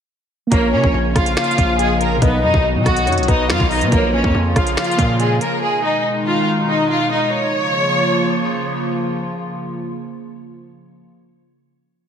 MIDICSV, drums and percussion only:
0, 0, Header, 1, 2, 480
1, 0, Start_track
1, 0, Tempo, 425532
1, 583, Time_signature, 4, 2, 24, 8
1, 13627, End_track
2, 0, Start_track
2, 0, Title_t, "Drums"
2, 582, Note_on_c, 9, 42, 79
2, 583, Note_on_c, 9, 36, 120
2, 695, Note_off_c, 9, 42, 0
2, 696, Note_off_c, 9, 36, 0
2, 944, Note_on_c, 9, 36, 85
2, 1056, Note_off_c, 9, 36, 0
2, 1304, Note_on_c, 9, 36, 112
2, 1305, Note_on_c, 9, 37, 94
2, 1306, Note_on_c, 9, 42, 87
2, 1417, Note_off_c, 9, 36, 0
2, 1418, Note_off_c, 9, 37, 0
2, 1418, Note_off_c, 9, 42, 0
2, 1424, Note_on_c, 9, 42, 86
2, 1537, Note_off_c, 9, 42, 0
2, 1543, Note_on_c, 9, 42, 46
2, 1544, Note_on_c, 9, 38, 124
2, 1550, Note_on_c, 9, 26, 98
2, 1624, Note_off_c, 9, 42, 0
2, 1624, Note_on_c, 9, 42, 60
2, 1657, Note_off_c, 9, 38, 0
2, 1663, Note_off_c, 9, 26, 0
2, 1704, Note_off_c, 9, 42, 0
2, 1704, Note_on_c, 9, 42, 76
2, 1784, Note_off_c, 9, 42, 0
2, 1784, Note_on_c, 9, 36, 100
2, 1784, Note_on_c, 9, 42, 90
2, 1896, Note_off_c, 9, 36, 0
2, 1896, Note_off_c, 9, 42, 0
2, 2021, Note_on_c, 9, 42, 83
2, 2133, Note_off_c, 9, 42, 0
2, 2264, Note_on_c, 9, 42, 81
2, 2377, Note_off_c, 9, 42, 0
2, 2503, Note_on_c, 9, 42, 80
2, 2504, Note_on_c, 9, 36, 116
2, 2616, Note_off_c, 9, 42, 0
2, 2617, Note_off_c, 9, 36, 0
2, 2864, Note_on_c, 9, 36, 91
2, 2977, Note_off_c, 9, 36, 0
2, 3225, Note_on_c, 9, 36, 107
2, 3225, Note_on_c, 9, 37, 99
2, 3226, Note_on_c, 9, 42, 84
2, 3337, Note_off_c, 9, 36, 0
2, 3338, Note_off_c, 9, 37, 0
2, 3339, Note_off_c, 9, 42, 0
2, 3344, Note_on_c, 9, 42, 86
2, 3457, Note_off_c, 9, 42, 0
2, 3464, Note_on_c, 9, 42, 63
2, 3523, Note_off_c, 9, 42, 0
2, 3523, Note_on_c, 9, 42, 64
2, 3583, Note_off_c, 9, 42, 0
2, 3583, Note_on_c, 9, 42, 65
2, 3643, Note_off_c, 9, 42, 0
2, 3643, Note_on_c, 9, 42, 64
2, 3703, Note_on_c, 9, 36, 101
2, 3704, Note_off_c, 9, 42, 0
2, 3704, Note_on_c, 9, 42, 90
2, 3816, Note_off_c, 9, 36, 0
2, 3816, Note_off_c, 9, 42, 0
2, 3943, Note_on_c, 9, 38, 118
2, 3950, Note_on_c, 9, 26, 98
2, 4056, Note_off_c, 9, 38, 0
2, 4063, Note_off_c, 9, 26, 0
2, 4063, Note_on_c, 9, 36, 100
2, 4176, Note_off_c, 9, 36, 0
2, 4183, Note_on_c, 9, 46, 60
2, 4295, Note_off_c, 9, 46, 0
2, 4301, Note_on_c, 9, 42, 75
2, 4414, Note_off_c, 9, 42, 0
2, 4422, Note_on_c, 9, 42, 77
2, 4423, Note_on_c, 9, 36, 120
2, 4535, Note_off_c, 9, 42, 0
2, 4536, Note_off_c, 9, 36, 0
2, 4784, Note_on_c, 9, 36, 88
2, 4897, Note_off_c, 9, 36, 0
2, 5144, Note_on_c, 9, 36, 108
2, 5144, Note_on_c, 9, 37, 101
2, 5144, Note_on_c, 9, 42, 84
2, 5256, Note_off_c, 9, 37, 0
2, 5257, Note_off_c, 9, 36, 0
2, 5257, Note_off_c, 9, 42, 0
2, 5264, Note_on_c, 9, 42, 84
2, 5376, Note_off_c, 9, 42, 0
2, 5383, Note_on_c, 9, 38, 126
2, 5383, Note_on_c, 9, 42, 45
2, 5390, Note_on_c, 9, 26, 98
2, 5463, Note_off_c, 9, 42, 0
2, 5463, Note_on_c, 9, 42, 62
2, 5496, Note_off_c, 9, 38, 0
2, 5503, Note_off_c, 9, 26, 0
2, 5543, Note_off_c, 9, 42, 0
2, 5543, Note_on_c, 9, 42, 75
2, 5624, Note_off_c, 9, 42, 0
2, 5624, Note_on_c, 9, 36, 95
2, 5624, Note_on_c, 9, 42, 91
2, 5736, Note_off_c, 9, 36, 0
2, 5737, Note_off_c, 9, 42, 0
2, 5861, Note_on_c, 9, 42, 87
2, 5974, Note_off_c, 9, 42, 0
2, 6104, Note_on_c, 9, 42, 83
2, 6216, Note_off_c, 9, 42, 0
2, 13627, End_track
0, 0, End_of_file